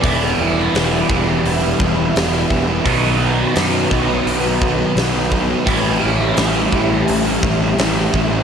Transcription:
<<
  \new Staff \with { instrumentName = "Ambient pad" } { \time 4/4 \key a \mixolydian \tempo 4 = 85 << { b''1~ | b''1 | a''1 | } \\ { <g' d'' e''>1 | <fis' b' dis''>1 | <g' e''>1 | } >> }
  \new Staff \with { instrumentName = "Overdriven electric guitar" } { \time 4/4 \key a \mixolydian <e g b e'>8 <e g b e'>8 <e g b e'>16 <g b e'>16 <e g b e'>16 <g b e'>8 <g b e'>16 <e g b e'>16 <g b e'>16 <e g b e'>8 <e g b e'>16 <g b e'>16 | <b, dis fis b dis'>8 <dis fis b dis'>8 <b, dis fis b dis'>16 <fis b dis'>16 <dis fis b dis'>16 <fis b dis'>8 <fis b dis'>16 <dis fis b dis'>16 <fis b dis'>16 <b, dis fis b dis'>8 <dis fis b dis'>16 <fis b dis'>16 | <a, e g cis' e'>8 <e g cis' e'>8 <a, e g cis' e'>16 <g cis' e'>16 <e g cis' e'>16 <g cis' e'>8 <g cis' e'>16 <e g cis' e'>16 <g cis' e'>16 <a, e g cis' e'>8 <e g cis' e'>16 <g cis' e'>16 | }
  \new Staff \with { instrumentName = "Overdriven electric guitar" } { \clef bass \time 4/4 \key a \mixolydian <e g b e'>1 | <b, dis fis b dis'>1 | <a, e g cis' e'>1 | }
  \new Staff \with { instrumentName = "Distorted electric guitar" } { \clef bass \time 4/4 \key a \mixolydian <e, b, e>8 <e, b, e>16 <b, e>16 <e, b, e>8 <e, b, e>16 <b, e>8 <b, e>16 <e, b, e>16 <b, e>16 <e, b, e>16 <b, e>8 <b, e>16 | <b, fis b>8 <b, fis b>16 <fis b>16 <b, fis b>8 <b, fis b>16 <fis b>8 <fis b>16 <b, fis b>16 <fis b>16 <b, fis b>16 <fis b>8 <fis b>16 | <a, e a>8 <a, e a>16 <e a>16 <a, e a>8 <a, e a>16 <e a>8 <e a>16 <a, e a>16 <e a>16 <a, e a>16 <e a>8 <e a>16 | }
  \new Staff \with { instrumentName = "Picked electric bass" } { \clef bass \time 4/4 \key a \mixolydian e,,8 e,,8 e,,8 e,,8 e,,8 e,,8 e,,8 e,,8 | b,,4 fis,8 b,,8 b,,4 b,,4 | a,,8 a,,8 a,,8 a,,8 a,,8 a,,8 a,,8 a,,8 | }
  \new DrumStaff \with { instrumentName = "Drums" } \drummode { \time 4/4 <hho bd>4 <hho sn>8 bd8 hho8 bd8 <hho sn>8 bd8 | <hho bd>4 <hho sn>8 bd8 hho8 bd8 <hho sn>8 bd8 | <hho bd>4 <hho sn>8 bd8 hho8 bd8 <hho sn>8 bd8 | }
>>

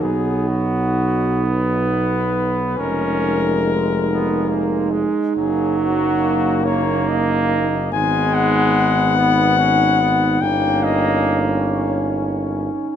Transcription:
<<
  \new Staff \with { instrumentName = "Flugelhorn" } { \time 6/8 \key ees \minor \tempo 4. = 47 aes'8 fis'4 b'4. | bes'2~ bes'8 r8 | aes'8 ges'4 des''8 ees''4 | \key gis \minor gis''8 fis''2~ fis''8 |
g''8 dis''8 r8 cis''8 r4 | }
  \new Staff \with { instrumentName = "French horn section" } { \time 6/8 \key ees \minor ees'2. | ees'2.~ | ees'2. | \key gis \minor dis'2.~ |
dis'2. | }
  \new Staff \with { instrumentName = "Trombone" } { \time 6/8 \key ees \minor b2. | des'4 r8 ces'8 bes8 aes8 | ges4. bes4. | \key gis \minor gis4. b8 cis'8 b8 |
ais2~ ais8 r8 | }
  \new Staff \with { instrumentName = "Trombone section" } { \time 6/8 \key ees \minor ges2. | aes2. | bes2. | \key gis \minor b2. |
cis'2. | }
  \new Staff \with { instrumentName = "Tuba" } { \clef bass \time 6/8 \key ees \minor b,,2. | f,,2~ f,,8 r8 | ges,,2. | \key gis \minor gis,,2. |
g,,2~ g,,8 r8 | }
>>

